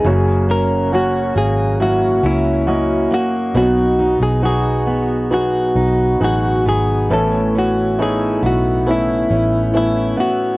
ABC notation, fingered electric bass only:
X:1
M:4/4
L:1/16
Q:1/4=68
K:Bmix
V:1 name="Fingered electric bass" clef=bass
F,,,6 G,,,4 C,,4 z2 | B,,,3 B,,,6- B,,, B,,,2 A,,,2 G,,,2 | A,,,6 B,,,4 A,,,4 z2 |]